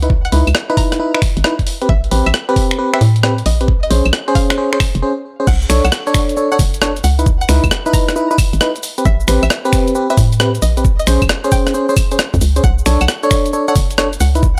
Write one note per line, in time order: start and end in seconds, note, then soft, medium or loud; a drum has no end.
0.00 0.29 C#2 medium
0.00 0.12 D#4 medium
0.00 0.12 E4 medium
0.00 0.12 B4 medium
0.00 0.11 F#5 loud
0.00 closed hi-hat medium
0.10 kick loud
0.25 0.38 F#5 medium
0.25 closed hi-hat soft
0.32 0.44 C#2 loud
0.32 0.48 D#4 loud
0.32 0.48 E4 medium
0.32 0.48 B4 loud
0.32 open hi-hat loud
0.47 0.53 C#2 medium
0.47 closed hi-hat medium
0.47 claves medium
0.55 cross-stick loud
0.70 0.98 D#4 loud
0.70 0.98 E4 medium
0.70 0.98 B4 loud
0.70 closed hi-hat soft
0.77 0.95 A#5 medium
0.77 kick loud
0.77 open hi-hat medium
0.92 cross-stick medium
0.92 closed hi-hat medium
0.99 1.12 D#4 medium
0.99 1.12 E4 medium
0.99 1.12 B4 loud
1.14 1.20 D#4 loud
1.14 1.20 E4 medium
1.14 1.20 B4 loud
1.14 finger snap medium
1.22 finger snap medium
1.22 kick loud
1.22 open hi-hat loud
1.37 1.42 G#1 medium
1.37 closed hi-hat medium
1.44 1.55 D#4 medium
1.44 1.55 E4 medium
1.44 1.55 B4 medium
1.44 cross-stick loud
1.59 kick medium
1.59 closed hi-hat medium
1.67 open hi-hat medium
1.82 1.91 C4 medium
1.82 1.91 G4 medium
1.82 1.91 B4 medium
1.82 closed hi-hat medium
1.89 2.08 A1 loud
1.89 2.12 E5 loud
1.89 kick loud
2.04 closed hi-hat soft
2.11 2.23 A1 medium
2.11 2.27 C4 loud
2.11 2.27 G4 medium
2.11 2.27 B4 loud
2.11 open hi-hat loud
2.26 2.32 A1 medium
2.26 2.49 E5 medium
2.26 closed hi-hat medium
2.26 claves medium
2.34 cross-stick loud
2.49 2.77 C4 loud
2.49 2.77 G4 medium
2.49 2.77 B4 loud
2.49 closed hi-hat soft
2.56 kick loud
2.56 open hi-hat medium
2.71 finger snap medium
2.71 closed hi-hat medium
2.79 2.91 C4 medium
2.79 2.91 G4 medium
2.79 2.91 B4 loud
2.93 2.99 C4 loud
2.93 2.99 G4 medium
2.93 2.99 B4 loud
2.93 3.16 E5 loud
2.93 finger snap medium
3.01 3.43 A2 medium
3.01 open hi-hat loud
3.16 closed hi-hat medium
3.23 3.34 C4 medium
3.23 3.34 G4 medium
3.23 3.34 B4 loud
3.23 cross-stick loud
3.38 closed hi-hat medium
3.46 3.88 A#1 medium
3.46 3.69 D#5 medium
3.46 open hi-hat loud
3.61 3.67 C4 medium
3.61 3.67 G4 medium
3.61 3.67 B4 medium
3.61 closed hi-hat medium
3.68 kick loud
3.83 3.96 D#5 medium
3.83 closed hi-hat soft
3.90 4.02 A#1 loud
3.90 4.06 C#4 loud
3.90 4.06 G#4 medium
3.90 4.06 C5 loud
3.90 open hi-hat loud
4.05 4.11 A#1 medium
4.05 closed hi-hat medium
4.05 claves medium
4.13 cross-stick loud
4.28 4.56 C#4 loud
4.28 4.56 G#4 loud
4.28 4.56 C5 loud
4.28 closed hi-hat soft
4.35 4.53 F5 loud
4.35 kick loud
4.35 open hi-hat medium
4.50 finger snap medium
4.50 cross-stick medium
4.50 closed hi-hat medium
4.58 4.70 C#4 medium
4.58 4.70 G#4 medium
4.58 4.70 C5 loud
4.73 4.78 C#4 loud
4.73 4.78 G#4 medium
4.73 4.78 C5 loud
4.73 finger snap medium
4.80 finger snap medium
4.80 kick loud
4.80 open hi-hat loud
4.80 claves medium
4.95 5.02 F1 medium
4.95 closed hi-hat medium
5.02 5.13 C#4 medium
5.02 5.13 G#4 medium
5.02 5.13 C5 medium
5.40 5.46 C#4 medium
5.40 5.46 G#4 medium
5.40 5.46 C5 medium
5.47 5.66 B1 loud
5.47 5.70 F#5 loud
5.47 kick loud
5.47 crash loud
5.47 cabasa soft
5.62 cabasa soft
5.70 5.81 B1 loud
5.70 5.85 D4 loud
5.70 5.85 A4 medium
5.70 5.85 C#5 loud
5.70 finger snap medium
5.70 open hi-hat loud
5.70 cabasa medium
5.84 5.90 B1 medium
5.84 6.07 F#5 medium
5.84 closed hi-hat medium
5.84 cabasa soft
5.84 claves medium
5.92 cross-stick loud
5.92 cabasa soft
6.07 6.35 D4 loud
6.07 6.35 A4 medium
6.07 6.35 C#5 loud
6.07 closed hi-hat soft
6.07 cabasa soft
6.14 finger snap medium
6.14 kick loud
6.14 open hi-hat medium
6.14 cabasa medium
6.29 closed hi-hat medium
6.29 cabasa soft
6.37 6.49 D4 medium
6.37 6.49 A4 medium
6.37 6.49 C#5 loud
6.37 cabasa soft
6.52 6.57 D4 loud
6.52 6.57 A4 medium
6.52 6.57 C#5 loud
6.52 6.75 F#5 loud
6.52 cabasa soft
6.59 7.01 F#1 medium
6.59 kick loud
6.59 open hi-hat loud
6.59 cabasa medium
6.74 closed hi-hat medium
6.74 cabasa soft
6.82 6.92 D4 medium
6.82 6.92 A4 medium
6.82 6.92 C#5 loud
6.82 cross-stick loud
6.82 cabasa soft
6.97 closed hi-hat medium
6.97 cabasa soft
7.04 7.46 C#2 medium
7.04 7.27 F#5 loud
7.04 open hi-hat loud
7.04 cabasa medium
7.19 7.28 D#4 medium
7.19 7.28 E4 medium
7.19 7.28 B4 medium
7.19 closed hi-hat medium
7.19 cabasa soft
7.26 kick loud
7.26 cabasa soft
7.41 7.54 F#5 medium
7.41 closed hi-hat soft
7.41 cabasa soft
7.49 7.60 C#2 loud
7.49 7.64 D#4 loud
7.49 7.64 E4 medium
7.49 7.64 B4 loud
7.49 finger snap medium
7.49 open hi-hat loud
7.49 cabasa medium
7.64 7.69 C#2 medium
7.64 kick medium
7.64 closed hi-hat medium
7.64 cabasa soft
7.64 claves medium
7.71 cross-stick loud
7.71 cabasa soft
7.86 8.14 D#4 loud
7.86 8.14 E4 medium
7.86 8.14 B4 loud
7.86 closed hi-hat soft
7.86 cabasa soft
7.93 8.11 A#5 medium
7.93 kick loud
7.93 open hi-hat loud
7.93 cabasa medium
8.09 cross-stick medium
8.09 closed hi-hat medium
8.09 cabasa soft
8.16 8.29 D#4 medium
8.16 8.29 E4 medium
8.16 8.29 B4 loud
8.16 cabasa soft
8.31 8.36 D#4 loud
8.31 8.36 E4 medium
8.31 8.36 B4 loud
8.31 cabasa soft
8.38 kick loud
8.38 open hi-hat loud
8.38 cabasa medium
8.38 claves medium
8.53 8.59 G#1 medium
8.53 closed hi-hat medium
8.53 cabasa soft
8.61 8.71 D#4 medium
8.61 8.71 E4 medium
8.61 8.71 B4 loud
8.61 cross-stick loud
8.61 cabasa soft
8.76 closed hi-hat medium
8.76 cabasa soft
8.83 open hi-hat loud
8.83 cabasa medium
8.98 9.07 C4 medium
8.98 9.07 G4 medium
8.98 9.07 B4 medium
8.98 closed hi-hat medium
8.98 cabasa soft
9.05 9.24 A1 loud
9.05 9.29 E5 loud
9.05 kick loud
9.05 cabasa soft
9.20 cabasa soft
9.28 9.39 A1 loud
9.28 9.44 C4 loud
9.28 9.44 G4 medium
9.28 9.44 B4 loud
9.28 finger snap medium
9.28 open hi-hat loud
9.28 cabasa medium
9.43 9.48 A1 medium
9.43 9.66 E5 medium
9.43 closed hi-hat medium
9.43 cabasa soft
9.43 claves medium
9.50 cross-stick loud
9.50 cabasa soft
9.65 9.93 C4 loud
9.65 9.93 G4 medium
9.65 9.93 B4 loud
9.65 closed hi-hat soft
9.65 cabasa soft
9.73 finger snap medium
9.73 kick loud
9.73 open hi-hat medium
9.73 cabasa medium
9.88 closed hi-hat medium
9.88 cabasa soft
9.95 10.08 C4 medium
9.95 10.08 G4 medium
9.95 10.08 B4 loud
9.95 cabasa soft
10.10 10.15 C4 loud
10.10 10.15 G4 medium
10.10 10.15 B4 loud
10.10 10.33 E5 loud
10.10 cabasa soft
10.17 10.59 A2 medium
10.17 kick loud
10.17 open hi-hat loud
10.17 cabasa medium
10.32 closed hi-hat medium
10.32 cabasa soft
10.40 10.50 C4 medium
10.40 10.50 G4 medium
10.40 10.50 B4 medium
10.40 cross-stick loud
10.40 cabasa soft
10.55 closed hi-hat medium
10.55 cabasa soft
10.62 11.04 A#1 medium
10.62 10.85 D#5 loud
10.62 open hi-hat medium
10.62 cabasa medium
10.77 10.84 C4 medium
10.77 10.84 G4 medium
10.77 10.84 B4 medium
10.77 closed hi-hat medium
10.77 cabasa soft
10.85 kick loud
10.85 cabasa soft
10.99 11.12 D#5 medium
10.99 closed hi-hat soft
10.99 cabasa soft
11.07 11.18 A#1 loud
11.07 11.23 C#4 loud
11.07 11.23 G#4 medium
11.07 11.23 C5 loud
11.07 finger snap medium
11.07 open hi-hat loud
11.07 cabasa medium
11.22 11.28 A#1 medium
11.22 kick medium
11.22 closed hi-hat medium
11.22 cabasa soft
11.22 claves medium
11.29 cross-stick loud
11.29 cabasa soft
11.44 11.72 C#4 loud
11.44 11.72 G#4 medium
11.44 11.72 C5 loud
11.44 closed hi-hat soft
11.44 cabasa soft
11.52 11.69 G5 medium
11.52 kick loud
11.52 open hi-hat medium
11.52 cabasa medium
11.67 cross-stick medium
11.67 closed hi-hat medium
11.67 cabasa soft
11.74 11.87 C#4 medium
11.74 11.87 G#4 medium
11.74 11.87 C5 loud
11.74 cabasa soft
11.89 11.94 C#4 loud
11.89 11.94 G#4 medium
11.89 11.94 C5 loud
11.89 cabasa soft
11.97 kick loud
11.97 open hi-hat loud
11.97 cabasa medium
11.97 claves medium
12.11 12.17 C#4 medium
12.11 12.17 G#4 medium
12.11 12.17 C5 loud
12.11 closed hi-hat medium
12.11 cabasa soft
12.19 cross-stick loud
12.19 cabasa soft
12.34 12.39 F2 loud
12.34 kick medium
12.34 closed hi-hat medium
12.34 cabasa soft
12.41 12.60 C#2 loud
12.41 open hi-hat medium
12.41 cabasa medium
12.56 12.61 C#4 medium
12.56 12.61 G#4 medium
12.56 12.61 C5 loud
12.56 closed hi-hat medium
12.56 cabasa soft
12.64 12.82 B1 loud
12.64 12.87 F#5 loud
12.64 kick loud
12.64 cabasa soft
12.79 cabasa soft
12.86 12.97 B1 loud
12.86 13.02 D4 loud
12.86 13.02 A4 medium
12.86 13.02 C#5 loud
12.86 finger snap soft
12.86 open hi-hat loud
12.86 cabasa medium
13.01 13.07 B1 medium
13.01 13.24 F#5 medium
13.01 closed hi-hat medium
13.01 cabasa soft
13.01 claves medium
13.08 cross-stick loud
13.08 cabasa soft
13.23 13.51 D4 loud
13.23 13.51 A4 medium
13.23 13.51 C#5 loud
13.23 closed hi-hat soft
13.23 cabasa soft
13.31 finger snap medium
13.31 kick loud
13.31 open hi-hat medium
13.31 cabasa medium
13.46 closed hi-hat medium
13.46 cabasa soft
13.53 13.66 D4 medium
13.53 13.66 A4 medium
13.53 13.66 C#5 loud
13.53 cabasa soft
13.68 13.73 D4 loud
13.68 13.73 A4 medium
13.68 13.73 C#5 loud
13.68 13.91 F#5 loud
13.68 cabasa soft
13.76 14.17 F#1 medium
13.76 kick loud
13.76 open hi-hat loud
13.76 cabasa medium
13.91 closed hi-hat medium
13.91 cabasa soft
13.98 14.08 D4 medium
13.98 14.08 A4 medium
13.98 14.08 C#5 loud
13.98 cross-stick loud
13.98 cabasa soft
14.13 closed hi-hat medium
14.13 cabasa soft
14.20 14.60 C#2 medium
14.20 14.44 F#5 medium
14.20 open hi-hat medium
14.20 cabasa medium
14.35 14.44 D#4 medium
14.35 14.44 E4 medium
14.35 14.44 B4 medium
14.35 closed hi-hat medium
14.35 cabasa soft
14.43 kick loud
14.43 cabasa soft